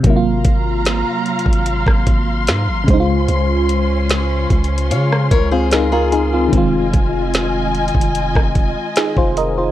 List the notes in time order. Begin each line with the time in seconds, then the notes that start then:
0.00 C3 F#3, closed hi-hat
0.04 G#1 F#3 A#3 F5 A#5 C6, kick
0.10 E4
0.16 F4
0.45 G#1, kick, closed hi-hat
0.85 snare, closed hi-hat
1.26 closed hi-hat
1.39 closed hi-hat
1.46 G#1, kick
1.53 closed hi-hat
1.66 closed hi-hat
1.87 G#1, kick, cross-stick
2.07 G#1, kick, closed hi-hat
2.47 G#2, snare, closed hi-hat
2.68 G#1
2.84 C#3 G#3 C#4 F4
2.88 C#2 C5, kick, closed hi-hat
2.94 D#4
3.00 F4
3.28 C#2, closed hi-hat
3.69 closed hi-hat
4.09 snare, closed hi-hat
4.50 C#2, kick, closed hi-hat
4.64 closed hi-hat
4.78 closed hi-hat
4.90 C#3 C#5 F5, closed hi-hat
5.12 cross-stick
5.31 C#2 A#4 C#5, kick, closed hi-hat
5.51 C4 F4 G#4 C5
5.71 D#4 G#4 A#4, snare, closed hi-hat
5.92 F4 G#4 A#4
6.12 D#4 G#4, closed hi-hat
6.33 C4 F4
6.48 D#3 G#3
6.53 F1 C4 D#5 G#5, kick, closed hi-hat
6.58 F4
6.93 F1, kick, closed hi-hat
7.34 snare, closed hi-hat
7.75 closed hi-hat
7.88 closed hi-hat
7.95 F1, kick
8.01 closed hi-hat
8.15 closed hi-hat
8.35 F1, kick, cross-stick
8.55 kick, closed hi-hat
8.96 D#4 G#4, snare, closed hi-hat
9.17 F1 F4 C5, kick
9.37 A#4 D#5, closed hi-hat
9.58 F4 C5